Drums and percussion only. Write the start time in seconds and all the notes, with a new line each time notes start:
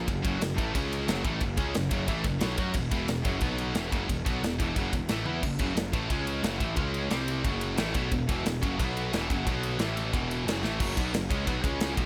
0.08 kick, ride
0.25 kick, ride
0.41 snare, ride
0.58 kick, ride
0.75 kick, ride
0.93 ride
1.08 snare, ride
1.25 kick, ride
1.41 kick, ride
1.57 kick, ride
1.74 snare, ride
1.91 kick, ride
2.08 kick, ride
2.24 kick, ride
2.41 snare, ride
2.58 kick, ride
2.74 kick, ride
2.91 kick, ride
3.08 snare, ride
3.25 kick, ride
3.41 kick, ride
3.58 ride
3.75 snare, ride
3.92 kick, ride
4.09 kick, ride
4.26 kick, ride
4.44 snare, ride
4.60 kick, ride
4.76 kick, ride
4.93 kick, ride
5.09 snare, ride
5.26 high tom
5.43 kick, crash
5.59 kick, ride
5.77 snare, ride
5.93 kick, ride
6.10 kick, ride
6.27 ride
6.44 snare, ride
6.60 kick, ride
6.76 kick, ride
6.94 ride
7.11 snare, ride
7.28 ride
7.44 kick, ride
7.61 ride
7.78 snare, ride
7.94 kick, ride
8.12 kick, ride
8.29 kick, ride
8.46 snare, ride
8.63 kick, ride
8.80 kick, ride
8.97 ride
9.13 snare, ride
9.30 kick, ride
9.47 kick, ride
9.63 ride
9.79 snare, ride
9.97 ride
10.14 kick, ride
10.31 ride
10.48 snare, ride
10.64 snare
10.80 kick, crash
10.97 kick, ride
11.14 snare, ride
11.31 kick, ride
11.47 kick, ride
11.64 kick, ride
11.80 snare, ride
11.97 kick, ride